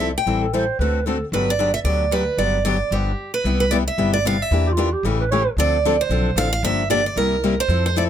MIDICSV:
0, 0, Header, 1, 5, 480
1, 0, Start_track
1, 0, Key_signature, 1, "major"
1, 0, Tempo, 265487
1, 470, Time_signature, 4, 2, 24, 8
1, 6239, Key_signature, 0, "major"
1, 14639, End_track
2, 0, Start_track
2, 0, Title_t, "Steel-string acoustic guitar"
2, 0, Program_c, 0, 25
2, 318, Note_on_c, 0, 79, 94
2, 740, Note_off_c, 0, 79, 0
2, 2416, Note_on_c, 0, 71, 75
2, 2704, Note_off_c, 0, 71, 0
2, 2716, Note_on_c, 0, 74, 94
2, 3135, Note_off_c, 0, 74, 0
2, 3142, Note_on_c, 0, 76, 86
2, 3233, Note_off_c, 0, 76, 0
2, 3340, Note_on_c, 0, 74, 72
2, 3837, Note_on_c, 0, 71, 87
2, 3843, Note_off_c, 0, 74, 0
2, 4311, Note_on_c, 0, 74, 76
2, 4332, Note_off_c, 0, 71, 0
2, 4760, Note_off_c, 0, 74, 0
2, 4787, Note_on_c, 0, 74, 72
2, 5282, Note_on_c, 0, 67, 63
2, 5287, Note_off_c, 0, 74, 0
2, 5982, Note_off_c, 0, 67, 0
2, 6035, Note_on_c, 0, 71, 73
2, 6481, Note_off_c, 0, 71, 0
2, 6512, Note_on_c, 0, 71, 79
2, 6705, Note_on_c, 0, 74, 85
2, 6725, Note_off_c, 0, 71, 0
2, 6796, Note_off_c, 0, 74, 0
2, 7007, Note_on_c, 0, 76, 76
2, 7447, Note_off_c, 0, 76, 0
2, 7476, Note_on_c, 0, 74, 92
2, 7666, Note_off_c, 0, 74, 0
2, 7719, Note_on_c, 0, 77, 104
2, 7992, Note_off_c, 0, 77, 0
2, 7992, Note_on_c, 0, 76, 92
2, 8452, Note_off_c, 0, 76, 0
2, 10117, Note_on_c, 0, 74, 97
2, 10864, Note_on_c, 0, 72, 88
2, 10873, Note_off_c, 0, 74, 0
2, 11531, Note_on_c, 0, 77, 109
2, 11553, Note_off_c, 0, 72, 0
2, 11777, Note_off_c, 0, 77, 0
2, 11799, Note_on_c, 0, 77, 100
2, 12006, Note_off_c, 0, 77, 0
2, 12014, Note_on_c, 0, 76, 97
2, 12477, Note_off_c, 0, 76, 0
2, 12484, Note_on_c, 0, 74, 91
2, 12735, Note_off_c, 0, 74, 0
2, 12768, Note_on_c, 0, 74, 74
2, 12951, Note_off_c, 0, 74, 0
2, 12972, Note_on_c, 0, 70, 81
2, 13736, Note_off_c, 0, 70, 0
2, 13743, Note_on_c, 0, 72, 95
2, 14187, Note_off_c, 0, 72, 0
2, 14208, Note_on_c, 0, 72, 81
2, 14390, Note_off_c, 0, 72, 0
2, 14426, Note_on_c, 0, 74, 76
2, 14517, Note_off_c, 0, 74, 0
2, 14639, End_track
3, 0, Start_track
3, 0, Title_t, "Clarinet"
3, 0, Program_c, 1, 71
3, 767, Note_on_c, 1, 69, 78
3, 970, Note_on_c, 1, 72, 89
3, 997, Note_off_c, 1, 69, 0
3, 1426, Note_off_c, 1, 72, 0
3, 1437, Note_on_c, 1, 71, 79
3, 1917, Note_on_c, 1, 69, 76
3, 1944, Note_off_c, 1, 71, 0
3, 2293, Note_off_c, 1, 69, 0
3, 8444, Note_on_c, 1, 67, 77
3, 8541, Note_on_c, 1, 65, 86
3, 8568, Note_off_c, 1, 67, 0
3, 8909, Note_on_c, 1, 67, 78
3, 8936, Note_off_c, 1, 65, 0
3, 9135, Note_on_c, 1, 69, 80
3, 9163, Note_off_c, 1, 67, 0
3, 9395, Note_off_c, 1, 69, 0
3, 9405, Note_on_c, 1, 71, 79
3, 9591, Note_off_c, 1, 71, 0
3, 9608, Note_on_c, 1, 73, 102
3, 9954, Note_off_c, 1, 73, 0
3, 14639, End_track
4, 0, Start_track
4, 0, Title_t, "Steel-string acoustic guitar"
4, 0, Program_c, 2, 25
4, 4, Note_on_c, 2, 64, 83
4, 18, Note_on_c, 2, 69, 67
4, 183, Note_off_c, 2, 64, 0
4, 190, Note_off_c, 2, 69, 0
4, 484, Note_on_c, 2, 52, 65
4, 487, Note_on_c, 2, 60, 60
4, 488, Note_on_c, 2, 55, 55
4, 494, Note_on_c, 2, 64, 71
4, 502, Note_on_c, 2, 69, 66
4, 810, Note_off_c, 2, 52, 0
4, 811, Note_off_c, 2, 60, 0
4, 812, Note_off_c, 2, 55, 0
4, 815, Note_off_c, 2, 64, 0
4, 819, Note_off_c, 2, 69, 0
4, 967, Note_on_c, 2, 52, 77
4, 970, Note_on_c, 2, 55, 71
4, 978, Note_on_c, 2, 60, 78
4, 981, Note_on_c, 2, 69, 89
4, 983, Note_on_c, 2, 64, 82
4, 1145, Note_off_c, 2, 52, 0
4, 1147, Note_off_c, 2, 55, 0
4, 1151, Note_off_c, 2, 60, 0
4, 1153, Note_off_c, 2, 64, 0
4, 1153, Note_off_c, 2, 69, 0
4, 1460, Note_on_c, 2, 50, 64
4, 1468, Note_on_c, 2, 57, 68
4, 1474, Note_on_c, 2, 60, 59
4, 1477, Note_on_c, 2, 66, 67
4, 1482, Note_on_c, 2, 69, 68
4, 1779, Note_off_c, 2, 50, 0
4, 1783, Note_off_c, 2, 57, 0
4, 1785, Note_off_c, 2, 60, 0
4, 1787, Note_off_c, 2, 66, 0
4, 1790, Note_off_c, 2, 69, 0
4, 1914, Note_on_c, 2, 50, 64
4, 1931, Note_on_c, 2, 60, 71
4, 1933, Note_on_c, 2, 57, 68
4, 1943, Note_on_c, 2, 66, 78
4, 1944, Note_on_c, 2, 69, 71
4, 2100, Note_off_c, 2, 50, 0
4, 2108, Note_off_c, 2, 60, 0
4, 2109, Note_off_c, 2, 57, 0
4, 2114, Note_off_c, 2, 66, 0
4, 2115, Note_off_c, 2, 69, 0
4, 2409, Note_on_c, 2, 50, 69
4, 2409, Note_on_c, 2, 54, 64
4, 2426, Note_on_c, 2, 59, 61
4, 2427, Note_on_c, 2, 62, 59
4, 2432, Note_on_c, 2, 67, 67
4, 2734, Note_off_c, 2, 50, 0
4, 2734, Note_off_c, 2, 54, 0
4, 2743, Note_off_c, 2, 59, 0
4, 2743, Note_off_c, 2, 62, 0
4, 2746, Note_off_c, 2, 67, 0
4, 2873, Note_on_c, 2, 50, 85
4, 2881, Note_on_c, 2, 54, 70
4, 2893, Note_on_c, 2, 62, 85
4, 2896, Note_on_c, 2, 59, 92
4, 2899, Note_on_c, 2, 67, 86
4, 3060, Note_off_c, 2, 50, 0
4, 3064, Note_off_c, 2, 54, 0
4, 3070, Note_off_c, 2, 62, 0
4, 3071, Note_off_c, 2, 59, 0
4, 3073, Note_off_c, 2, 67, 0
4, 3356, Note_on_c, 2, 50, 60
4, 3363, Note_on_c, 2, 54, 56
4, 3365, Note_on_c, 2, 59, 59
4, 3370, Note_on_c, 2, 62, 63
4, 3381, Note_on_c, 2, 67, 64
4, 3688, Note_off_c, 2, 50, 0
4, 3692, Note_off_c, 2, 54, 0
4, 3692, Note_off_c, 2, 59, 0
4, 3695, Note_off_c, 2, 62, 0
4, 3701, Note_off_c, 2, 67, 0
4, 3818, Note_on_c, 2, 50, 65
4, 3828, Note_on_c, 2, 54, 69
4, 3838, Note_on_c, 2, 59, 79
4, 3846, Note_on_c, 2, 62, 77
4, 3851, Note_on_c, 2, 67, 84
4, 4014, Note_off_c, 2, 50, 0
4, 4019, Note_off_c, 2, 54, 0
4, 4023, Note_off_c, 2, 59, 0
4, 4027, Note_off_c, 2, 62, 0
4, 4030, Note_off_c, 2, 67, 0
4, 4314, Note_on_c, 2, 50, 61
4, 4320, Note_on_c, 2, 54, 63
4, 4328, Note_on_c, 2, 59, 57
4, 4338, Note_on_c, 2, 67, 67
4, 4341, Note_on_c, 2, 62, 56
4, 4648, Note_off_c, 2, 50, 0
4, 4651, Note_off_c, 2, 54, 0
4, 4655, Note_off_c, 2, 59, 0
4, 4660, Note_off_c, 2, 67, 0
4, 4662, Note_off_c, 2, 62, 0
4, 4799, Note_on_c, 2, 54, 87
4, 4803, Note_on_c, 2, 50, 85
4, 4808, Note_on_c, 2, 59, 75
4, 4811, Note_on_c, 2, 62, 90
4, 4821, Note_on_c, 2, 67, 87
4, 4984, Note_off_c, 2, 54, 0
4, 4986, Note_off_c, 2, 50, 0
4, 4989, Note_off_c, 2, 59, 0
4, 4991, Note_off_c, 2, 62, 0
4, 4996, Note_off_c, 2, 67, 0
4, 5286, Note_on_c, 2, 50, 58
4, 5290, Note_on_c, 2, 53, 53
4, 5300, Note_on_c, 2, 59, 60
4, 5306, Note_on_c, 2, 62, 66
4, 5311, Note_on_c, 2, 67, 60
4, 5614, Note_off_c, 2, 50, 0
4, 5616, Note_off_c, 2, 53, 0
4, 5621, Note_off_c, 2, 59, 0
4, 5624, Note_off_c, 2, 62, 0
4, 5627, Note_off_c, 2, 67, 0
4, 6243, Note_on_c, 2, 48, 58
4, 6244, Note_on_c, 2, 55, 66
4, 6253, Note_on_c, 2, 59, 70
4, 6264, Note_on_c, 2, 64, 63
4, 6272, Note_on_c, 2, 67, 70
4, 6573, Note_off_c, 2, 48, 0
4, 6574, Note_off_c, 2, 55, 0
4, 6578, Note_off_c, 2, 59, 0
4, 6583, Note_off_c, 2, 64, 0
4, 6587, Note_off_c, 2, 67, 0
4, 6717, Note_on_c, 2, 48, 88
4, 6725, Note_on_c, 2, 55, 85
4, 6730, Note_on_c, 2, 59, 90
4, 6733, Note_on_c, 2, 64, 101
4, 6741, Note_on_c, 2, 67, 88
4, 6904, Note_off_c, 2, 48, 0
4, 6908, Note_off_c, 2, 55, 0
4, 6911, Note_off_c, 2, 59, 0
4, 6912, Note_off_c, 2, 64, 0
4, 6916, Note_off_c, 2, 67, 0
4, 7198, Note_on_c, 2, 48, 63
4, 7203, Note_on_c, 2, 55, 75
4, 7212, Note_on_c, 2, 59, 69
4, 7214, Note_on_c, 2, 64, 72
4, 7222, Note_on_c, 2, 67, 73
4, 7531, Note_off_c, 2, 48, 0
4, 7533, Note_off_c, 2, 55, 0
4, 7538, Note_off_c, 2, 59, 0
4, 7539, Note_off_c, 2, 64, 0
4, 7542, Note_off_c, 2, 67, 0
4, 7687, Note_on_c, 2, 48, 70
4, 7694, Note_on_c, 2, 55, 79
4, 7700, Note_on_c, 2, 59, 82
4, 7706, Note_on_c, 2, 64, 74
4, 7711, Note_on_c, 2, 67, 81
4, 7869, Note_off_c, 2, 48, 0
4, 7872, Note_off_c, 2, 55, 0
4, 7876, Note_off_c, 2, 59, 0
4, 7878, Note_off_c, 2, 64, 0
4, 7881, Note_off_c, 2, 67, 0
4, 8165, Note_on_c, 2, 52, 73
4, 8180, Note_on_c, 2, 58, 62
4, 8195, Note_on_c, 2, 62, 74
4, 8198, Note_on_c, 2, 67, 71
4, 8494, Note_off_c, 2, 52, 0
4, 8501, Note_off_c, 2, 58, 0
4, 8509, Note_off_c, 2, 62, 0
4, 8510, Note_off_c, 2, 67, 0
4, 8625, Note_on_c, 2, 52, 96
4, 8633, Note_on_c, 2, 58, 93
4, 8645, Note_on_c, 2, 62, 88
4, 8651, Note_on_c, 2, 67, 103
4, 8818, Note_off_c, 2, 52, 0
4, 8822, Note_off_c, 2, 58, 0
4, 8828, Note_off_c, 2, 62, 0
4, 8831, Note_off_c, 2, 67, 0
4, 9123, Note_on_c, 2, 49, 64
4, 9133, Note_on_c, 2, 57, 75
4, 9137, Note_on_c, 2, 52, 73
4, 9143, Note_on_c, 2, 67, 83
4, 9147, Note_on_c, 2, 61, 81
4, 9453, Note_off_c, 2, 49, 0
4, 9457, Note_off_c, 2, 57, 0
4, 9459, Note_off_c, 2, 52, 0
4, 9462, Note_off_c, 2, 67, 0
4, 9465, Note_off_c, 2, 61, 0
4, 9613, Note_on_c, 2, 49, 72
4, 9620, Note_on_c, 2, 52, 77
4, 9621, Note_on_c, 2, 57, 81
4, 9636, Note_on_c, 2, 67, 80
4, 9637, Note_on_c, 2, 61, 80
4, 9791, Note_off_c, 2, 49, 0
4, 9795, Note_off_c, 2, 52, 0
4, 9795, Note_off_c, 2, 57, 0
4, 9803, Note_off_c, 2, 61, 0
4, 9803, Note_off_c, 2, 67, 0
4, 10093, Note_on_c, 2, 50, 74
4, 10094, Note_on_c, 2, 53, 73
4, 10103, Note_on_c, 2, 60, 65
4, 10106, Note_on_c, 2, 62, 69
4, 10111, Note_on_c, 2, 69, 65
4, 10417, Note_off_c, 2, 50, 0
4, 10418, Note_off_c, 2, 53, 0
4, 10422, Note_off_c, 2, 60, 0
4, 10423, Note_off_c, 2, 62, 0
4, 10426, Note_off_c, 2, 69, 0
4, 10583, Note_on_c, 2, 50, 85
4, 10584, Note_on_c, 2, 53, 87
4, 10592, Note_on_c, 2, 60, 83
4, 10595, Note_on_c, 2, 62, 97
4, 10602, Note_on_c, 2, 69, 96
4, 10756, Note_off_c, 2, 50, 0
4, 10756, Note_off_c, 2, 53, 0
4, 10760, Note_off_c, 2, 60, 0
4, 10762, Note_off_c, 2, 62, 0
4, 10766, Note_off_c, 2, 69, 0
4, 11040, Note_on_c, 2, 50, 78
4, 11041, Note_on_c, 2, 53, 73
4, 11054, Note_on_c, 2, 60, 68
4, 11061, Note_on_c, 2, 62, 74
4, 11064, Note_on_c, 2, 69, 65
4, 11370, Note_off_c, 2, 50, 0
4, 11370, Note_off_c, 2, 53, 0
4, 11377, Note_off_c, 2, 60, 0
4, 11381, Note_off_c, 2, 62, 0
4, 11382, Note_off_c, 2, 69, 0
4, 11508, Note_on_c, 2, 50, 64
4, 11520, Note_on_c, 2, 60, 77
4, 11524, Note_on_c, 2, 53, 71
4, 11529, Note_on_c, 2, 62, 84
4, 11532, Note_on_c, 2, 69, 82
4, 11698, Note_off_c, 2, 50, 0
4, 11704, Note_off_c, 2, 60, 0
4, 11706, Note_off_c, 2, 53, 0
4, 11709, Note_off_c, 2, 62, 0
4, 11710, Note_off_c, 2, 69, 0
4, 11991, Note_on_c, 2, 50, 59
4, 12001, Note_on_c, 2, 53, 73
4, 12010, Note_on_c, 2, 58, 66
4, 12014, Note_on_c, 2, 62, 70
4, 12016, Note_on_c, 2, 67, 76
4, 12325, Note_off_c, 2, 50, 0
4, 12330, Note_off_c, 2, 53, 0
4, 12335, Note_off_c, 2, 58, 0
4, 12337, Note_off_c, 2, 62, 0
4, 12338, Note_off_c, 2, 67, 0
4, 12472, Note_on_c, 2, 50, 88
4, 12473, Note_on_c, 2, 53, 76
4, 12478, Note_on_c, 2, 58, 102
4, 12492, Note_on_c, 2, 62, 92
4, 12493, Note_on_c, 2, 67, 98
4, 12660, Note_off_c, 2, 50, 0
4, 12660, Note_off_c, 2, 53, 0
4, 12662, Note_off_c, 2, 58, 0
4, 12669, Note_off_c, 2, 62, 0
4, 12670, Note_off_c, 2, 67, 0
4, 12955, Note_on_c, 2, 48, 68
4, 12964, Note_on_c, 2, 55, 72
4, 12971, Note_on_c, 2, 58, 67
4, 12981, Note_on_c, 2, 64, 75
4, 12985, Note_on_c, 2, 67, 73
4, 13287, Note_off_c, 2, 48, 0
4, 13291, Note_off_c, 2, 55, 0
4, 13295, Note_off_c, 2, 58, 0
4, 13300, Note_off_c, 2, 64, 0
4, 13301, Note_off_c, 2, 67, 0
4, 13443, Note_on_c, 2, 48, 78
4, 13447, Note_on_c, 2, 55, 76
4, 13450, Note_on_c, 2, 58, 80
4, 13461, Note_on_c, 2, 67, 73
4, 13464, Note_on_c, 2, 64, 68
4, 13624, Note_off_c, 2, 48, 0
4, 13626, Note_off_c, 2, 55, 0
4, 13628, Note_off_c, 2, 58, 0
4, 13633, Note_off_c, 2, 67, 0
4, 13635, Note_off_c, 2, 64, 0
4, 13907, Note_on_c, 2, 53, 60
4, 13916, Note_on_c, 2, 60, 75
4, 13928, Note_on_c, 2, 64, 76
4, 13942, Note_on_c, 2, 69, 64
4, 14242, Note_off_c, 2, 53, 0
4, 14246, Note_off_c, 2, 60, 0
4, 14252, Note_off_c, 2, 64, 0
4, 14260, Note_off_c, 2, 69, 0
4, 14394, Note_on_c, 2, 53, 90
4, 14403, Note_on_c, 2, 60, 90
4, 14413, Note_on_c, 2, 64, 97
4, 14415, Note_on_c, 2, 69, 93
4, 14579, Note_off_c, 2, 53, 0
4, 14584, Note_off_c, 2, 60, 0
4, 14589, Note_off_c, 2, 64, 0
4, 14590, Note_off_c, 2, 69, 0
4, 14639, End_track
5, 0, Start_track
5, 0, Title_t, "Upright bass"
5, 0, Program_c, 3, 32
5, 0, Note_on_c, 3, 36, 73
5, 272, Note_off_c, 3, 36, 0
5, 469, Note_on_c, 3, 33, 70
5, 1239, Note_off_c, 3, 33, 0
5, 1430, Note_on_c, 3, 38, 79
5, 2200, Note_off_c, 3, 38, 0
5, 2387, Note_on_c, 3, 31, 80
5, 3159, Note_off_c, 3, 31, 0
5, 3333, Note_on_c, 3, 38, 80
5, 4111, Note_off_c, 3, 38, 0
5, 4292, Note_on_c, 3, 31, 76
5, 5071, Note_off_c, 3, 31, 0
5, 5256, Note_on_c, 3, 31, 76
5, 5649, Note_off_c, 3, 31, 0
5, 6225, Note_on_c, 3, 36, 83
5, 6999, Note_off_c, 3, 36, 0
5, 7195, Note_on_c, 3, 31, 84
5, 7965, Note_off_c, 3, 31, 0
5, 8155, Note_on_c, 3, 40, 85
5, 8924, Note_off_c, 3, 40, 0
5, 9100, Note_on_c, 3, 33, 88
5, 9875, Note_off_c, 3, 33, 0
5, 10065, Note_on_c, 3, 38, 79
5, 10837, Note_off_c, 3, 38, 0
5, 11018, Note_on_c, 3, 35, 81
5, 11434, Note_off_c, 3, 35, 0
5, 11497, Note_on_c, 3, 33, 88
5, 11913, Note_off_c, 3, 33, 0
5, 11983, Note_on_c, 3, 31, 87
5, 12755, Note_off_c, 3, 31, 0
5, 12942, Note_on_c, 3, 36, 77
5, 13714, Note_off_c, 3, 36, 0
5, 13894, Note_on_c, 3, 41, 92
5, 14639, Note_off_c, 3, 41, 0
5, 14639, End_track
0, 0, End_of_file